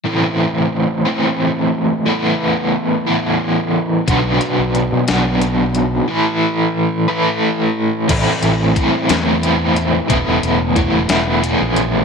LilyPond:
<<
  \new Staff \with { instrumentName = "Overdriven electric guitar" } { \time 6/8 \key a \minor \tempo 4. = 60 <a, e a c' e'>4. <a, e a c' e'>4. | <e a b e'>4. <e a b e'>4. | <b, fis b d' fis'>4. <b, fis b d' fis'>4. | <e a e' a' b'>4. <e a e' a' b'>4. |
<a, e a c' e'>4 <e a c' e'>8 <a, e a c' e'>8 <e a c' e'>4 | <e a b e'>4 <e a b e'>8 <e a b e'>8 <e a b e'>4 | }
  \new Staff \with { instrumentName = "Fingered electric bass" } { \clef bass \time 6/8 \key a \minor r2. | r2. | b,,8 r16 b,,8 b,16 b,,4. | r2. |
a,,16 r16 a,,8 r8 e,4. | e,,16 e,,16 e,,8. e,,16 e,,8. bes,,8. | }
  \new DrumStaff \with { instrumentName = "Drums" } \drummode { \time 6/8 r4. r4. | r4. r4. | <hh bd>8 hh8 hh8 <hh sn>8 hh8 hh8 | r4. r4. |
<cymc hh bd>8 hh8 <hh bd>8 <hh sn>8 hh8 hh8 | <hh bd>8 hh8 <hh bd>8 <hh sn>8 hh8 hh8 | }
>>